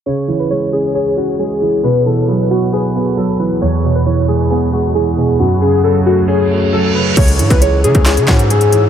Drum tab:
CC |----------------|----------------|----------------|----------------|
HH |----------------|----------------|----------------|----------------|
CP |----------------|----------------|----------------|----------------|
SD |----------------|----------------|----------------|----------------|
BD |----------------|----------------|----------------|----------------|

CC |x---------------|
HH |xxxxx-xxxx-xxxx-|
CP |--------x-x-----|
SD |--------o-o-----|
BD |o--o---o--o-----|